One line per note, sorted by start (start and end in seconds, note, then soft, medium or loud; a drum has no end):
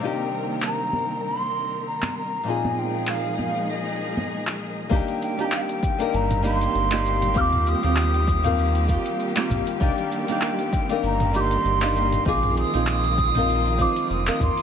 0.00 2.42 C3 medium
0.00 2.42 D#3 medium
0.00 2.42 G3 medium
0.00 2.42 A#3 medium
0.00 2.42 C4 medium
0.00 2.43 D4 medium
0.00 2.44 D#4 medium
0.00 2.42 A#4 medium
0.00 0.60 G5 medium
0.05 2.45 G4 medium
0.62 1.20 A#5 medium
0.62 clap medium
0.93 high conga soft
1.25 1.82 C6 loud
1.86 2.14 A#5 medium
2.02 clap medium
2.02 high conga medium
2.17 2.50 A#5 medium
2.43 4.86 A#2 medium
2.43 4.89 F3 medium
2.43 4.89 G#3 medium
2.43 4.89 A#3 medium
2.43 4.87 C4 medium
2.43 4.89 D#4 medium
2.43 4.88 D#4 medium
2.43 4.89 G#4 medium
2.48 4.89 F4 medium
2.48 4.90 G#4 medium
2.48 2.79 G#5 medium
2.65 high conga medium
2.78 3.10 G5 medium
3.07 3.39 F5 medium
3.07 clap medium
3.39 3.71 F5 medium
3.39 high conga medium
3.69 4.61 D#5 medium
4.17 high conga medium
4.47 clap medium
4.89 5.01 C2 loud
4.89 14.62 D#3 medium
4.89 12.22 G3 medium
4.89 5.34 A#3 loud
4.89 14.62 A#3 medium
4.89 9.77 C4 medium
4.89 5.35 D4 medium
4.89 5.35 D#4 medium
4.89 12.22 G4 medium
4.89 5.36 G4 loud
4.89 4.97 A#5 medium
4.89 kick loud
4.89 shaker soft
4.96 5.20 G5 medium
5.08 open hi-hat soft
5.22 5.41 G5 medium
5.22 shaker medium
5.37 5.95 A#3 medium
5.37 5.96 D4 medium
5.37 5.96 D#4 medium
5.37 5.97 G4 medium
5.37 5.45 A#5 medium
5.37 open hi-hat medium
5.37 shaker soft
5.44 5.58 G5 medium
5.52 clap medium
5.52 shaker soft
5.57 5.62 F5 medium
5.61 6.16 G5 medium
5.69 open hi-hat soft
5.83 kick loud
5.83 shaker medium
5.98 6.40 A#3 medium
5.98 6.40 D4 medium
5.98 6.41 D#4 medium
5.98 6.41 A#4 loud
5.98 open hi-hat medium
5.98 shaker soft
6.14 6.68 G1 loud
6.14 6.44 A#5 medium
6.14 shaker soft
6.31 mid tom medium
6.31 open hi-hat soft
6.31 shaker soft
6.42 6.87 A#3 medium
6.42 6.87 D4 medium
6.42 6.88 D#4 medium
6.42 6.89 G4 medium
6.42 7.38 C6 loud
6.42 shaker medium
6.61 open hi-hat medium
6.61 shaker soft
6.75 7.37 G1 medium
6.75 shaker soft
6.90 7.32 A#3 loud
6.90 7.32 D4 medium
6.90 7.33 D#4 medium
6.90 7.33 G4 loud
6.90 clap medium
7.06 shaker medium
7.22 mid tom medium
7.22 open hi-hat medium
7.22 shaker soft
7.34 7.75 D#2 loud
7.34 7.79 A#3 loud
7.34 7.79 C4 medium
7.34 7.80 F4 medium
7.34 7.80 G4 loud
7.34 7.41 F6 loud
7.34 kick loud
7.34 shaker soft
7.40 7.69 D6 loud
7.52 mid tom medium
7.52 open hi-hat soft
7.67 8.89 D#6 loud
7.67 shaker medium
7.83 8.97 D#2 medium
7.83 8.40 A#3 medium
7.83 8.41 C4 medium
7.83 8.41 F4 medium
7.83 8.42 G4 medium
7.83 open hi-hat medium
7.83 shaker soft
7.96 clap medium
7.96 shaker soft
8.14 open hi-hat soft
8.28 kick loud
8.28 shaker medium
8.43 8.85 A#3 loud
8.43 8.85 C4 medium
8.43 8.86 F4 medium
8.43 8.86 A#4 loud
8.43 mid tom medium
8.43 open hi-hat medium
8.43 shaker soft
8.59 shaker soft
8.75 open hi-hat soft
8.75 shaker soft
8.88 9.32 A#3 medium
8.88 9.33 C4 medium
8.88 9.33 F4 medium
8.88 9.34 G4 medium
8.88 kick medium
8.88 shaker medium
9.06 open hi-hat medium
9.06 shaker soft
9.20 shaker soft
9.36 9.77 A#3 loud
9.36 9.77 C4 medium
9.36 9.78 F4 medium
9.36 9.79 G4 loud
9.36 clap medium
9.50 9.60 A#1 medium
9.50 kick medium
9.50 mid tom medium
9.50 shaker medium
9.67 open hi-hat medium
9.67 shaker soft
9.80 9.91 C2 loud
9.80 10.24 A#3 loud
9.80 12.23 C4 medium
9.80 10.25 D4 medium
9.80 10.25 D#4 medium
9.80 10.26 G4 loud
9.80 10.10 G5 medium
9.80 kick loud
9.80 shaker soft
9.98 open hi-hat soft
10.12 11.00 G5 medium
10.12 shaker medium
10.28 10.85 A#3 medium
10.28 10.86 D4 medium
10.28 10.87 D#4 medium
10.28 10.87 G4 medium
10.28 open hi-hat medium
10.28 shaker soft
10.41 clap medium
10.41 shaker soft
10.59 open hi-hat soft
10.73 kick loud
10.73 shaker medium
10.89 11.30 A#3 loud
10.89 11.31 D4 medium
10.89 11.31 D#4 medium
10.89 11.32 A#4 loud
10.89 open hi-hat medium
10.89 shaker soft
11.03 11.57 G1 medium
11.03 11.37 A#5 medium
11.03 shaker soft
11.20 mid tom medium
11.20 open hi-hat soft
11.20 shaker soft
11.33 11.77 A#3 medium
11.33 11.78 D4 medium
11.33 11.78 D#4 medium
11.33 11.79 G4 medium
11.33 11.41 D6 loud
11.33 shaker medium
11.40 12.26 C6 loud
11.51 open hi-hat medium
11.51 shaker soft
11.65 12.19 G1 loud
11.65 shaker soft
11.80 12.22 A#3 medium
11.80 12.22 D4 medium
11.80 12.23 D#4 medium
11.80 12.23 G4 loud
11.80 clap medium
11.96 shaker medium
12.12 mid tom medium
12.12 open hi-hat medium
12.12 shaker soft
12.25 12.65 A#1 loud
12.25 14.62 F3 medium
12.25 14.62 G#3 medium
12.25 12.69 C4 loud
12.25 12.70 D#4 medium
12.25 14.62 F4 medium
12.25 12.70 F4 medium
12.25 12.71 G#4 loud
12.25 12.55 D6 loud
12.25 kick loud
12.25 shaker soft
12.43 mid tom medium
12.43 open hi-hat soft
12.57 13.83 D#6 loud
12.57 shaker medium
12.73 13.87 A#1 medium
12.73 13.30 C4 medium
12.73 13.31 D#4 medium
12.73 13.31 F4 medium
12.73 13.32 G#4 medium
12.73 open hi-hat medium
12.73 shaker soft
12.87 clap medium
12.87 shaker soft
13.04 open hi-hat soft
13.18 kick loud
13.18 shaker medium
13.35 13.75 C4 medium
13.35 13.76 D#4 medium
13.35 13.76 F4 medium
13.35 13.77 A#4 loud
13.35 mid tom medium
13.35 open hi-hat soft
13.35 shaker soft
13.49 shaker soft
13.66 open hi-hat soft
13.66 shaker soft
13.78 14.22 C4 medium
13.78 14.23 D#4 medium
13.78 14.23 F4 medium
13.78 14.24 C5 loud
13.78 14.10 D6 loud
13.78 kick medium
13.78 shaker medium
13.96 open hi-hat medium
13.96 shaker soft
14.10 14.30 F1 loud
14.10 14.39 D#6 loud
14.10 shaker soft
14.25 14.62 C4 medium
14.25 14.62 D#4 medium
14.25 14.62 F4 medium
14.25 14.62 A#4 medium
14.25 clap medium
14.40 14.50 D#2 medium
14.40 14.62 C6 medium
14.40 kick medium
14.40 mid tom medium
14.40 shaker medium
14.57 open hi-hat soft
14.57 shaker soft